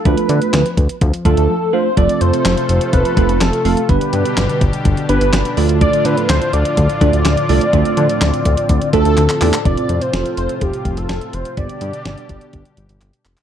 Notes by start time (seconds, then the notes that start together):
0.05 D2 F3 A3 D4 F4 A4 B4, kick, closed hi-hat
0.17 closed hi-hat
0.29 D3 A3, closed hi-hat
0.42 closed hi-hat
0.53 D2 F3, snare, clap, closed hi-hat
0.66 closed hi-hat
0.77 D2, kick, closed hi-hat
0.89 closed hi-hat
1.01 D2 F3, kick, closed hi-hat
1.14 closed hi-hat
1.25 D2 A3 D4 F4 A4, kick, closed hi-hat
1.37 D2, closed hi-hat
1.49 F3
1.73 A3 D4 F4 A4 C5 F5
1.97 F1 C3 F3 A3 C4 F4 A4 D5, kick, closed hi-hat
2.09 closed hi-hat
2.21 F2 A3 C5, closed hi-hat
2.33 closed hi-hat
2.45 F1 F3, snare, clap, closed hi-hat
2.57 closed hi-hat
2.69 F1, closed hi-hat
2.81 closed hi-hat
2.93 F1 F3 B4, kick, closed hi-hat
3.05 closed hi-hat
3.17 F1 A3 C4 F4 A4, kick, closed hi-hat
3.29 F1, closed hi-hat
3.41 F1 F3 A4, snare, clap, closed hi-hat
3.53 closed hi-hat
3.65 F1 A3 C4 F4 A4 F5, open hi-hat
3.77 closed hi-hat
3.89 G1 B2 D3 G3 B3 D4 G4 B4, kick, closed hi-hat
4.01 closed hi-hat
4.13 G2 G3, closed hi-hat
4.25 closed hi-hat
4.37 G1 D3, snare, clap, closed hi-hat
4.49 closed hi-hat
4.61 G1, kick, closed hi-hat
4.73 closed hi-hat
4.85 G1 D3, kick, closed hi-hat
4.97 closed hi-hat
5.09 G1 B3 D4 G4 B4, closed hi-hat
5.21 G1, closed hi-hat
5.33 G1 D3, snare, clap, closed hi-hat
5.45 closed hi-hat
5.57 D2 A2 F3 A3 D4 F4 A4 D5, open hi-hat
5.69 closed hi-hat
5.81 D3 D5, kick, closed hi-hat
5.93 closed hi-hat
6.05 D3 F3 B4, closed hi-hat
6.17 closed hi-hat
6.29 D2 D3 C5, snare, clap, closed hi-hat
6.42 closed hi-hat
6.53 D2 D5, closed hi-hat
6.65 closed hi-hat
6.77 D2 D3, kick, closed hi-hat
6.90 closed hi-hat
7.01 D2 A3 D4 F4 A4, kick, closed hi-hat
7.13 D2, closed hi-hat
7.25 D2 D3, snare, clap, closed hi-hat
7.37 closed hi-hat
7.49 C2 A3 C4 D4 F4 A4 D5, open hi-hat
7.61 closed hi-hat
7.73 D2 D3 A3 D4 F4 A4, kick, closed hi-hat
7.85 closed hi-hat
7.97 D3 F3, closed hi-hat
8.09 closed hi-hat
8.21 D2 D3, snare, clap, closed hi-hat
8.34 closed hi-hat
8.45 D2, kick, closed hi-hat
8.57 closed hi-hat
8.69 D2 D3, kick, closed hi-hat
8.82 closed hi-hat
8.93 D2 A3 D4 F4 A4, kick, closed hi-hat
9.05 D2, closed hi-hat
9.17 D2 D3, clap, closed hi-hat
9.29 clap, closed hi-hat
9.41 E2 A3 D4 F4 G4 D5, clap, open hi-hat
9.53 clap, closed hi-hat
9.65 F1 A2 C3 F3 C4 F4 A4 D5, kick, closed hi-hat
9.77 closed hi-hat
9.89 F2, closed hi-hat
10.02 C5, closed hi-hat
10.13 F1 C4 F4 A4, snare, closed hi-hat
10.26 closed hi-hat
10.37 F1 C5, closed hi-hat
10.49 closed hi-hat
10.61 F1 G4, kick, closed hi-hat
10.73 closed hi-hat
10.85 F1, kick, closed hi-hat
10.97 F1 A4, closed hi-hat
11.09 F1, snare, closed hi-hat
11.21 closed hi-hat
11.33 F1 C5, closed hi-hat
11.45 closed hi-hat
11.57 G1 B2 D3 G3 B3 D4 G4 D5, kick, closed hi-hat
11.69 closed hi-hat
11.81 G2, closed hi-hat
11.93 closed hi-hat
12.05 G1 B3 D4 G4, snare, closed hi-hat
12.18 closed hi-hat
12.29 G1, kick, closed hi-hat
12.41 closed hi-hat
12.53 G1, kick, closed hi-hat
12.65 closed hi-hat
12.77 G1, closed hi-hat
12.89 G1, closed hi-hat
13.01 G1, clap, closed hi-hat
13.13 closed hi-hat
13.25 F1, clap, closed hi-hat
13.37 clap, closed hi-hat